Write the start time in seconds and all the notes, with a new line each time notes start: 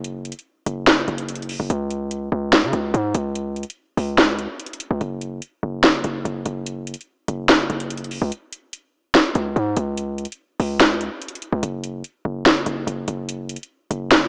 Already playing: F#1
0.04 closed hi-hat
0.25 closed hi-hat
0.32 closed hi-hat
0.39 closed hi-hat
0.66 F#1, closed hi-hat
0.87 snare, closed hi-hat
1.08 F#1, closed hi-hat
1.18 closed hi-hat
1.28 closed hi-hat
1.35 closed hi-hat
1.42 closed hi-hat
1.49 open hi-hat
1.60 F#1
1.70 C#2, closed hi-hat
1.90 closed hi-hat
2.11 closed hi-hat
2.32 C#2
2.53 snare, closed hi-hat
2.63 C#3
2.73 C#2, closed hi-hat
2.94 G#2, closed hi-hat
3.14 C#2, closed hi-hat
3.35 closed hi-hat
3.56 closed hi-hat
3.63 closed hi-hat
3.70 closed hi-hat
3.97 C#2, open hi-hat
4.18 snare, closed hi-hat
4.39 closed hi-hat
4.59 closed hi-hat
4.66 closed hi-hat
4.73 closed hi-hat
4.80 closed hi-hat
4.91 C#2
5.01 F#1, closed hi-hat
5.21 closed hi-hat
5.42 closed hi-hat
5.63 F#1
5.83 snare, closed hi-hat
6.04 F#1, closed hi-hat
6.25 F#1, closed hi-hat
6.45 F#1, closed hi-hat
6.66 closed hi-hat
6.87 closed hi-hat
6.94 closed hi-hat
7.01 closed hi-hat
7.28 F#1, closed hi-hat
7.49 snare, closed hi-hat
7.70 F#1, closed hi-hat
7.80 closed hi-hat
7.90 closed hi-hat
7.97 closed hi-hat
8.04 closed hi-hat
8.11 open hi-hat
8.22 C#2
8.32 closed hi-hat
8.52 closed hi-hat
8.73 closed hi-hat
9.15 snare, closed hi-hat
9.35 C#2, closed hi-hat
9.56 G#2, closed hi-hat
9.77 C#2, closed hi-hat
9.97 closed hi-hat
10.18 closed hi-hat
10.25 closed hi-hat
10.32 closed hi-hat
10.60 C#2, open hi-hat
10.80 snare, closed hi-hat
11.01 closed hi-hat
11.22 closed hi-hat
11.29 closed hi-hat
11.35 closed hi-hat
11.42 closed hi-hat
11.53 C#2
11.63 F#1, closed hi-hat
11.84 closed hi-hat
12.04 closed hi-hat
12.25 F#1
12.46 snare, closed hi-hat
12.66 F#1, closed hi-hat
12.87 F#1, closed hi-hat
13.08 F#1, closed hi-hat
13.29 closed hi-hat
13.49 closed hi-hat
13.56 closed hi-hat
13.63 closed hi-hat
13.91 F#1, closed hi-hat
14.11 snare, closed hi-hat